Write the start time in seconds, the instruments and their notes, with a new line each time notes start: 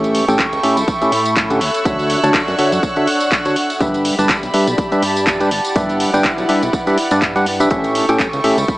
Already playing: analog synth bass A1, synth stab A2 C#4 G4 A4 E5, ambient pad E4 A4 B4 E5, string section A4 G5 C#6
0.04 closed hi-hat, tambourine
0.13 ambient pad B5 C#6, open hi-hat
0.28 analog synth bass A1, synth stab A2 C#4 G4 A4 G5, closed hi-hat, tambourine
0.39 kick, clap, closed hi-hat, tambourine
0.53 analog synth bass C#2, closed hi-hat, tambourine
0.63 synth stab A2 C#4 G4 A4 E5, open hi-hat
0.77 analog synth bass C#2, closed hi-hat, tambourine
0.88 kick, closed hi-hat, tambourine
1.02 synth stab A2 C#4 G4 A4 E5, closed hi-hat, tambourine
1.12 analog synth bass A2, open hi-hat
1.25 closed hi-hat, tambourine
1.37 kick, clap, closed hi-hat, tambourine
1.50 synth stab D3 C#4 G4 A4 F#5, closed hi-hat, tambourine
1.61 analog synth bass D2, ambient pad D4, string section C#5 C#6 E6 F#6, open hi-hat
1.74 closed hi-hat, tambourine
1.85 analog synth bass D2, synth stab D3 D4 F#4 C#5 E5, kick, closed hi-hat, tambourine
1.99 ambient pad F#5, closed hi-hat, tambourine
2.10 open hi-hat
2.24 analog synth bass D2, synth stab D3 D4 F#4 C#5 A5, closed hi-hat, tambourine
2.34 kick, clap, closed hi-hat, tambourine
2.48 analog synth bass F#2, closed hi-hat, tambourine
2.59 synth stab D3 D4 F#4 C#5 E5, open hi-hat
2.72 analog synth bass F#2, closed hi-hat, tambourine
2.83 kick, closed hi-hat, tambourine
2.96 synth stab D3 D4 F#4 C#5 E5, closed hi-hat, tambourine
3.07 open hi-hat
3.20 closed hi-hat, tambourine
3.32 kick, clap, closed hi-hat, tambourine
3.45 synth stab D3 D4 F#4 C#5 F#5, closed hi-hat, tambourine
3.56 open hi-hat
3.70 closed hi-hat, tambourine
3.80 analog synth bass G1, synth stab G3 D4 G4 B4 E5, ambient pad G4, string section G4 E5 B5, kick, closed hi-hat, tambourine
3.93 ambient pad B5, closed hi-hat, tambourine
4.05 ambient pad D5, open hi-hat
4.19 analog synth bass G1, synth stab G3 D4 G4 B4 A5, closed hi-hat, tambourine
4.29 kick, clap, closed hi-hat, tambourine
4.36 ambient pad A5
4.43 analog synth bass B1, closed hi-hat, tambourine
4.54 synth stab G3 D4 G4 B4 E5, open hi-hat
4.67 analog synth bass B1, closed hi-hat, tambourine
4.78 kick, closed hi-hat, tambourine
4.92 synth stab G3 D4 G4 B4 E5, closed hi-hat, tambourine
5.02 analog synth bass G2, open hi-hat
5.16 closed hi-hat, tambourine
5.27 kick, clap, closed hi-hat, tambourine
5.40 synth stab G3 D4 G4 B4 G5, closed hi-hat, tambourine
5.51 analog synth bass G1, ambient pad E4, string section D5 F#5, open hi-hat
5.65 closed hi-hat, tambourine
5.76 analog synth bass G1, synth stab G3 D4 G4 B4 E5, ambient pad B4, kick, closed hi-hat, tambourine
5.89 closed hi-hat, tambourine
6.00 open hi-hat
6.14 analog synth bass G1, synth stab G3 D4 G4 B4 G5, tambourine
6.24 kick, clap, closed hi-hat, tambourine
6.38 analog synth bass B1, closed hi-hat, tambourine
6.49 synth stab G3 D4 G4 B4 E5, open hi-hat
6.63 analog synth bass B1, closed hi-hat, tambourine
6.73 kick, closed hi-hat, tambourine
6.87 synth stab G3 D4 G4 B4 E5, closed hi-hat, tambourine
6.98 open hi-hat
7.11 analog synth bass G2, synth stab G3 D4 G4 B4 D5, closed hi-hat, tambourine
7.22 kick, clap, closed hi-hat, tambourine
7.36 synth stab G3 D4 G4 B4 F#5, closed hi-hat, tambourine
7.46 open hi-hat
7.60 analog synth bass B1, synth stab D4 G4 B4 E5, closed hi-hat, tambourine
7.70 analog synth bass A1, synth stab A2, ambient pad A4, string section A4 G5 C#6, kick, closed hi-hat, tambourine
7.84 ambient pad E5, closed hi-hat, tambourine
7.95 open hi-hat
8.01 ambient pad B5
8.09 analog synth bass A1, synth stab A2 C#4 G4 A4 G5, closed hi-hat, tambourine
8.16 ambient pad C#6, kick, closed hi-hat
8.20 clap, tambourine
8.33 analog synth bass C#2, closed hi-hat, tambourine
8.44 synth stab A2 C#4 G4 A4 E5, open hi-hat
8.58 analog synth bass C#2, closed hi-hat, tambourine
8.68 kick, closed hi-hat, tambourine